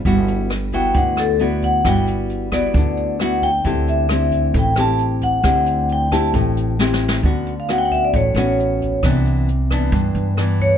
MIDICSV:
0, 0, Header, 1, 5, 480
1, 0, Start_track
1, 0, Tempo, 448766
1, 60, Time_signature, 4, 2, 24, 8
1, 11528, End_track
2, 0, Start_track
2, 0, Title_t, "Vibraphone"
2, 0, Program_c, 0, 11
2, 796, Note_on_c, 0, 79, 89
2, 1022, Note_off_c, 0, 79, 0
2, 1039, Note_on_c, 0, 78, 76
2, 1264, Note_off_c, 0, 78, 0
2, 1279, Note_on_c, 0, 69, 63
2, 1504, Note_off_c, 0, 69, 0
2, 1525, Note_on_c, 0, 74, 65
2, 1747, Note_off_c, 0, 74, 0
2, 1754, Note_on_c, 0, 78, 79
2, 1982, Note_off_c, 0, 78, 0
2, 1996, Note_on_c, 0, 79, 93
2, 2136, Note_off_c, 0, 79, 0
2, 2711, Note_on_c, 0, 74, 88
2, 3385, Note_off_c, 0, 74, 0
2, 3447, Note_on_c, 0, 78, 72
2, 3669, Note_off_c, 0, 78, 0
2, 3670, Note_on_c, 0, 79, 108
2, 3900, Note_off_c, 0, 79, 0
2, 4161, Note_on_c, 0, 76, 61
2, 4830, Note_off_c, 0, 76, 0
2, 4910, Note_on_c, 0, 79, 82
2, 5121, Note_off_c, 0, 79, 0
2, 5133, Note_on_c, 0, 81, 99
2, 5352, Note_off_c, 0, 81, 0
2, 5598, Note_on_c, 0, 78, 93
2, 6268, Note_off_c, 0, 78, 0
2, 6337, Note_on_c, 0, 79, 81
2, 6548, Note_on_c, 0, 81, 102
2, 6554, Note_off_c, 0, 79, 0
2, 6691, Note_off_c, 0, 81, 0
2, 8126, Note_on_c, 0, 77, 65
2, 8231, Note_off_c, 0, 77, 0
2, 8241, Note_on_c, 0, 78, 73
2, 8310, Note_off_c, 0, 78, 0
2, 8325, Note_on_c, 0, 79, 82
2, 8391, Note_off_c, 0, 79, 0
2, 8401, Note_on_c, 0, 78, 73
2, 8469, Note_off_c, 0, 78, 0
2, 8469, Note_on_c, 0, 76, 74
2, 8582, Note_off_c, 0, 76, 0
2, 8605, Note_on_c, 0, 74, 66
2, 8710, Note_off_c, 0, 74, 0
2, 8729, Note_on_c, 0, 73, 67
2, 9632, Note_off_c, 0, 73, 0
2, 11355, Note_on_c, 0, 73, 82
2, 11528, Note_off_c, 0, 73, 0
2, 11528, End_track
3, 0, Start_track
3, 0, Title_t, "Nylon-string guitar"
3, 0, Program_c, 1, 24
3, 56, Note_on_c, 1, 55, 53
3, 56, Note_on_c, 1, 59, 55
3, 66, Note_on_c, 1, 64, 49
3, 71, Note_on_c, 1, 66, 58
3, 535, Note_off_c, 1, 59, 0
3, 541, Note_off_c, 1, 64, 0
3, 543, Note_off_c, 1, 66, 0
3, 784, Note_on_c, 1, 59, 61
3, 787, Note_on_c, 1, 64, 55
3, 793, Note_on_c, 1, 66, 69
3, 996, Note_off_c, 1, 55, 0
3, 1010, Note_on_c, 1, 50, 54
3, 1466, Note_off_c, 1, 59, 0
3, 1466, Note_off_c, 1, 64, 0
3, 1470, Note_off_c, 1, 66, 0
3, 1497, Note_on_c, 1, 59, 61
3, 1503, Note_on_c, 1, 64, 53
3, 1508, Note_on_c, 1, 66, 54
3, 1942, Note_off_c, 1, 59, 0
3, 1945, Note_off_c, 1, 64, 0
3, 1946, Note_off_c, 1, 66, 0
3, 1953, Note_off_c, 1, 50, 0
3, 1978, Note_on_c, 1, 55, 55
3, 1982, Note_on_c, 1, 59, 53
3, 1983, Note_on_c, 1, 64, 55
3, 1988, Note_on_c, 1, 66, 65
3, 2663, Note_off_c, 1, 59, 0
3, 2665, Note_off_c, 1, 64, 0
3, 2667, Note_off_c, 1, 66, 0
3, 2692, Note_on_c, 1, 59, 64
3, 2699, Note_on_c, 1, 64, 53
3, 2704, Note_on_c, 1, 66, 65
3, 2918, Note_off_c, 1, 55, 0
3, 2949, Note_on_c, 1, 50, 54
3, 3380, Note_off_c, 1, 59, 0
3, 3382, Note_off_c, 1, 64, 0
3, 3386, Note_off_c, 1, 66, 0
3, 3426, Note_on_c, 1, 59, 59
3, 3431, Note_on_c, 1, 64, 52
3, 3436, Note_on_c, 1, 66, 66
3, 3734, Note_off_c, 1, 59, 0
3, 3737, Note_off_c, 1, 64, 0
3, 3738, Note_off_c, 1, 66, 0
3, 3883, Note_off_c, 1, 50, 0
3, 3899, Note_on_c, 1, 50, 55
3, 3905, Note_on_c, 1, 60, 59
3, 3911, Note_on_c, 1, 64, 57
3, 3916, Note_on_c, 1, 67, 59
3, 4346, Note_off_c, 1, 60, 0
3, 4349, Note_off_c, 1, 64, 0
3, 4350, Note_off_c, 1, 67, 0
3, 4394, Note_on_c, 1, 60, 65
3, 4400, Note_on_c, 1, 64, 64
3, 4404, Note_on_c, 1, 67, 70
3, 4838, Note_off_c, 1, 50, 0
3, 4872, Note_on_c, 1, 45, 58
3, 5070, Note_off_c, 1, 60, 0
3, 5074, Note_off_c, 1, 64, 0
3, 5075, Note_off_c, 1, 67, 0
3, 5104, Note_on_c, 1, 60, 66
3, 5109, Note_on_c, 1, 64, 66
3, 5111, Note_on_c, 1, 67, 70
3, 5786, Note_off_c, 1, 60, 0
3, 5788, Note_off_c, 1, 64, 0
3, 5788, Note_off_c, 1, 67, 0
3, 5804, Note_off_c, 1, 45, 0
3, 5812, Note_on_c, 1, 50, 54
3, 5818, Note_on_c, 1, 60, 52
3, 5819, Note_on_c, 1, 64, 56
3, 5825, Note_on_c, 1, 67, 61
3, 6501, Note_off_c, 1, 60, 0
3, 6503, Note_off_c, 1, 64, 0
3, 6504, Note_off_c, 1, 67, 0
3, 6542, Note_on_c, 1, 60, 60
3, 6550, Note_on_c, 1, 67, 62
3, 6551, Note_on_c, 1, 64, 63
3, 6754, Note_off_c, 1, 50, 0
3, 6785, Note_on_c, 1, 45, 59
3, 7225, Note_off_c, 1, 60, 0
3, 7227, Note_off_c, 1, 64, 0
3, 7228, Note_off_c, 1, 67, 0
3, 7273, Note_on_c, 1, 60, 63
3, 7277, Note_on_c, 1, 64, 60
3, 7282, Note_on_c, 1, 67, 59
3, 7720, Note_off_c, 1, 45, 0
3, 7728, Note_off_c, 1, 60, 0
3, 7731, Note_off_c, 1, 64, 0
3, 7733, Note_off_c, 1, 67, 0
3, 7745, Note_on_c, 1, 50, 52
3, 7750, Note_on_c, 1, 59, 49
3, 7755, Note_on_c, 1, 61, 52
3, 7759, Note_on_c, 1, 66, 65
3, 8054, Note_off_c, 1, 59, 0
3, 8058, Note_off_c, 1, 61, 0
3, 8058, Note_off_c, 1, 66, 0
3, 8221, Note_on_c, 1, 59, 54
3, 8229, Note_on_c, 1, 61, 51
3, 8235, Note_on_c, 1, 66, 65
3, 8680, Note_off_c, 1, 50, 0
3, 8715, Note_on_c, 1, 45, 51
3, 8903, Note_off_c, 1, 59, 0
3, 8907, Note_off_c, 1, 61, 0
3, 8910, Note_off_c, 1, 66, 0
3, 8949, Note_on_c, 1, 59, 58
3, 8956, Note_on_c, 1, 61, 66
3, 8960, Note_on_c, 1, 66, 62
3, 9627, Note_off_c, 1, 59, 0
3, 9630, Note_off_c, 1, 66, 0
3, 9631, Note_off_c, 1, 61, 0
3, 9644, Note_off_c, 1, 45, 0
3, 9669, Note_on_c, 1, 48, 54
3, 9670, Note_on_c, 1, 52, 54
3, 9676, Note_on_c, 1, 59, 54
3, 9680, Note_on_c, 1, 62, 63
3, 10141, Note_off_c, 1, 52, 0
3, 10146, Note_off_c, 1, 59, 0
3, 10146, Note_off_c, 1, 62, 0
3, 10388, Note_on_c, 1, 52, 50
3, 10391, Note_on_c, 1, 59, 57
3, 10399, Note_on_c, 1, 62, 61
3, 10601, Note_off_c, 1, 48, 0
3, 10611, Note_on_c, 1, 43, 52
3, 11066, Note_off_c, 1, 52, 0
3, 11067, Note_off_c, 1, 59, 0
3, 11071, Note_off_c, 1, 62, 0
3, 11092, Note_on_c, 1, 52, 59
3, 11097, Note_on_c, 1, 59, 58
3, 11103, Note_on_c, 1, 62, 62
3, 11528, Note_off_c, 1, 43, 0
3, 11528, Note_off_c, 1, 52, 0
3, 11528, Note_off_c, 1, 59, 0
3, 11528, Note_off_c, 1, 62, 0
3, 11528, End_track
4, 0, Start_track
4, 0, Title_t, "Upright bass"
4, 0, Program_c, 2, 32
4, 54, Note_on_c, 2, 31, 81
4, 976, Note_off_c, 2, 31, 0
4, 1010, Note_on_c, 2, 38, 98
4, 1934, Note_off_c, 2, 38, 0
4, 1975, Note_on_c, 2, 31, 89
4, 2897, Note_off_c, 2, 31, 0
4, 2932, Note_on_c, 2, 38, 105
4, 3855, Note_off_c, 2, 38, 0
4, 3899, Note_on_c, 2, 38, 92
4, 4819, Note_off_c, 2, 38, 0
4, 4857, Note_on_c, 2, 33, 101
4, 5777, Note_off_c, 2, 33, 0
4, 5814, Note_on_c, 2, 38, 96
4, 6736, Note_off_c, 2, 38, 0
4, 6778, Note_on_c, 2, 33, 100
4, 7697, Note_off_c, 2, 33, 0
4, 7735, Note_on_c, 2, 38, 90
4, 8655, Note_off_c, 2, 38, 0
4, 8701, Note_on_c, 2, 33, 99
4, 8919, Note_off_c, 2, 33, 0
4, 8926, Note_on_c, 2, 33, 88
4, 9611, Note_off_c, 2, 33, 0
4, 9656, Note_on_c, 2, 36, 92
4, 10576, Note_off_c, 2, 36, 0
4, 10611, Note_on_c, 2, 43, 107
4, 10839, Note_off_c, 2, 43, 0
4, 10853, Note_on_c, 2, 43, 87
4, 11528, Note_off_c, 2, 43, 0
4, 11528, End_track
5, 0, Start_track
5, 0, Title_t, "Drums"
5, 55, Note_on_c, 9, 36, 59
5, 58, Note_on_c, 9, 42, 57
5, 162, Note_off_c, 9, 36, 0
5, 165, Note_off_c, 9, 42, 0
5, 296, Note_on_c, 9, 42, 42
5, 403, Note_off_c, 9, 42, 0
5, 538, Note_on_c, 9, 37, 61
5, 538, Note_on_c, 9, 42, 45
5, 645, Note_off_c, 9, 37, 0
5, 645, Note_off_c, 9, 42, 0
5, 772, Note_on_c, 9, 42, 45
5, 774, Note_on_c, 9, 36, 23
5, 879, Note_off_c, 9, 42, 0
5, 881, Note_off_c, 9, 36, 0
5, 1012, Note_on_c, 9, 42, 61
5, 1014, Note_on_c, 9, 36, 56
5, 1119, Note_off_c, 9, 42, 0
5, 1121, Note_off_c, 9, 36, 0
5, 1252, Note_on_c, 9, 37, 60
5, 1252, Note_on_c, 9, 42, 46
5, 1359, Note_off_c, 9, 37, 0
5, 1359, Note_off_c, 9, 42, 0
5, 1487, Note_on_c, 9, 42, 42
5, 1594, Note_off_c, 9, 42, 0
5, 1735, Note_on_c, 9, 36, 22
5, 1735, Note_on_c, 9, 42, 43
5, 1842, Note_off_c, 9, 36, 0
5, 1842, Note_off_c, 9, 42, 0
5, 1976, Note_on_c, 9, 36, 58
5, 1976, Note_on_c, 9, 37, 58
5, 1976, Note_on_c, 9, 42, 57
5, 2083, Note_off_c, 9, 36, 0
5, 2083, Note_off_c, 9, 37, 0
5, 2083, Note_off_c, 9, 42, 0
5, 2215, Note_on_c, 9, 42, 49
5, 2322, Note_off_c, 9, 42, 0
5, 2455, Note_on_c, 9, 42, 45
5, 2562, Note_off_c, 9, 42, 0
5, 2694, Note_on_c, 9, 37, 62
5, 2694, Note_on_c, 9, 42, 39
5, 2695, Note_on_c, 9, 36, 25
5, 2801, Note_off_c, 9, 37, 0
5, 2801, Note_off_c, 9, 42, 0
5, 2802, Note_off_c, 9, 36, 0
5, 2933, Note_on_c, 9, 42, 52
5, 2936, Note_on_c, 9, 36, 56
5, 3040, Note_off_c, 9, 42, 0
5, 3043, Note_off_c, 9, 36, 0
5, 3174, Note_on_c, 9, 42, 44
5, 3281, Note_off_c, 9, 42, 0
5, 3419, Note_on_c, 9, 37, 56
5, 3419, Note_on_c, 9, 42, 42
5, 3526, Note_off_c, 9, 37, 0
5, 3526, Note_off_c, 9, 42, 0
5, 3662, Note_on_c, 9, 36, 23
5, 3666, Note_on_c, 9, 42, 43
5, 3769, Note_off_c, 9, 36, 0
5, 3773, Note_off_c, 9, 42, 0
5, 3901, Note_on_c, 9, 36, 54
5, 3904, Note_on_c, 9, 42, 57
5, 4008, Note_off_c, 9, 36, 0
5, 4011, Note_off_c, 9, 42, 0
5, 4144, Note_on_c, 9, 42, 44
5, 4251, Note_off_c, 9, 42, 0
5, 4375, Note_on_c, 9, 37, 64
5, 4375, Note_on_c, 9, 42, 43
5, 4482, Note_off_c, 9, 37, 0
5, 4482, Note_off_c, 9, 42, 0
5, 4614, Note_on_c, 9, 42, 41
5, 4619, Note_on_c, 9, 36, 25
5, 4721, Note_off_c, 9, 42, 0
5, 4726, Note_off_c, 9, 36, 0
5, 4855, Note_on_c, 9, 42, 55
5, 4860, Note_on_c, 9, 36, 64
5, 4962, Note_off_c, 9, 42, 0
5, 4967, Note_off_c, 9, 36, 0
5, 5090, Note_on_c, 9, 37, 58
5, 5090, Note_on_c, 9, 42, 45
5, 5197, Note_off_c, 9, 37, 0
5, 5197, Note_off_c, 9, 42, 0
5, 5333, Note_on_c, 9, 42, 43
5, 5440, Note_off_c, 9, 42, 0
5, 5576, Note_on_c, 9, 42, 48
5, 5579, Note_on_c, 9, 36, 24
5, 5683, Note_off_c, 9, 42, 0
5, 5686, Note_off_c, 9, 36, 0
5, 5815, Note_on_c, 9, 37, 56
5, 5815, Note_on_c, 9, 42, 57
5, 5819, Note_on_c, 9, 36, 55
5, 5922, Note_off_c, 9, 37, 0
5, 5922, Note_off_c, 9, 42, 0
5, 5926, Note_off_c, 9, 36, 0
5, 6054, Note_on_c, 9, 42, 49
5, 6161, Note_off_c, 9, 42, 0
5, 6299, Note_on_c, 9, 42, 44
5, 6406, Note_off_c, 9, 42, 0
5, 6541, Note_on_c, 9, 36, 22
5, 6544, Note_on_c, 9, 37, 53
5, 6544, Note_on_c, 9, 42, 43
5, 6648, Note_off_c, 9, 36, 0
5, 6651, Note_off_c, 9, 37, 0
5, 6651, Note_off_c, 9, 42, 0
5, 6781, Note_on_c, 9, 36, 63
5, 6784, Note_on_c, 9, 42, 64
5, 6888, Note_off_c, 9, 36, 0
5, 6890, Note_off_c, 9, 42, 0
5, 7023, Note_on_c, 9, 42, 46
5, 7130, Note_off_c, 9, 42, 0
5, 7264, Note_on_c, 9, 38, 44
5, 7371, Note_off_c, 9, 38, 0
5, 7417, Note_on_c, 9, 38, 50
5, 7524, Note_off_c, 9, 38, 0
5, 7577, Note_on_c, 9, 38, 65
5, 7684, Note_off_c, 9, 38, 0
5, 7740, Note_on_c, 9, 36, 54
5, 7740, Note_on_c, 9, 42, 51
5, 7847, Note_off_c, 9, 36, 0
5, 7847, Note_off_c, 9, 42, 0
5, 7984, Note_on_c, 9, 42, 42
5, 8091, Note_off_c, 9, 42, 0
5, 8223, Note_on_c, 9, 37, 57
5, 8223, Note_on_c, 9, 42, 41
5, 8330, Note_off_c, 9, 37, 0
5, 8330, Note_off_c, 9, 42, 0
5, 8463, Note_on_c, 9, 36, 21
5, 8470, Note_on_c, 9, 42, 36
5, 8570, Note_off_c, 9, 36, 0
5, 8577, Note_off_c, 9, 42, 0
5, 8703, Note_on_c, 9, 36, 54
5, 8708, Note_on_c, 9, 42, 61
5, 8810, Note_off_c, 9, 36, 0
5, 8815, Note_off_c, 9, 42, 0
5, 8942, Note_on_c, 9, 37, 58
5, 8942, Note_on_c, 9, 42, 47
5, 9049, Note_off_c, 9, 37, 0
5, 9049, Note_off_c, 9, 42, 0
5, 9189, Note_on_c, 9, 42, 43
5, 9296, Note_off_c, 9, 42, 0
5, 9421, Note_on_c, 9, 36, 22
5, 9429, Note_on_c, 9, 42, 42
5, 9528, Note_off_c, 9, 36, 0
5, 9536, Note_off_c, 9, 42, 0
5, 9657, Note_on_c, 9, 37, 60
5, 9657, Note_on_c, 9, 42, 58
5, 9658, Note_on_c, 9, 36, 60
5, 9764, Note_off_c, 9, 37, 0
5, 9764, Note_off_c, 9, 42, 0
5, 9765, Note_off_c, 9, 36, 0
5, 9899, Note_on_c, 9, 42, 43
5, 10006, Note_off_c, 9, 42, 0
5, 10144, Note_on_c, 9, 42, 40
5, 10251, Note_off_c, 9, 42, 0
5, 10377, Note_on_c, 9, 36, 22
5, 10382, Note_on_c, 9, 37, 57
5, 10382, Note_on_c, 9, 42, 42
5, 10484, Note_off_c, 9, 36, 0
5, 10488, Note_off_c, 9, 37, 0
5, 10488, Note_off_c, 9, 42, 0
5, 10615, Note_on_c, 9, 36, 56
5, 10616, Note_on_c, 9, 42, 53
5, 10722, Note_off_c, 9, 36, 0
5, 10723, Note_off_c, 9, 42, 0
5, 10859, Note_on_c, 9, 42, 43
5, 10966, Note_off_c, 9, 42, 0
5, 11098, Note_on_c, 9, 37, 56
5, 11098, Note_on_c, 9, 42, 44
5, 11205, Note_off_c, 9, 37, 0
5, 11205, Note_off_c, 9, 42, 0
5, 11334, Note_on_c, 9, 36, 22
5, 11336, Note_on_c, 9, 42, 40
5, 11441, Note_off_c, 9, 36, 0
5, 11443, Note_off_c, 9, 42, 0
5, 11528, End_track
0, 0, End_of_file